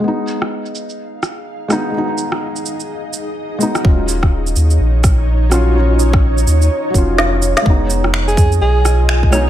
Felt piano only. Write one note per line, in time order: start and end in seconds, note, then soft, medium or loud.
0.00 1.66 G#3 medium
0.00 1.68 B3 medium
0.08 1.70 D#4 medium
1.68 1.89 G#3 medium
1.68 1.92 B3 medium
1.68 1.93 D#4 medium
1.90 3.57 G#3 medium
1.90 3.59 B3 medium
1.98 3.61 D#4 medium
3.59 3.81 G#3 medium
3.59 3.82 B3 medium
3.63 3.83 D#4 medium
3.81 5.47 F#3 medium
3.81 5.49 C#4 medium
3.89 5.51 F4 medium
5.49 5.70 F#3 medium
5.49 5.73 C#4 medium
5.49 5.74 F4 medium
5.71 6.89 F#3 medium
5.71 6.92 C#4 medium
5.79 6.94 F4 medium
6.90 7.61 F#3 medium
6.90 7.63 C#4 medium
6.98 7.65 F4 medium
7.62 9.28 G#3 medium
7.66 9.30 B3 medium
7.70 9.32 D#4 medium
9.30 9.50 G#3 medium
9.30 9.50 B3 medium
9.34 9.50 D#4 medium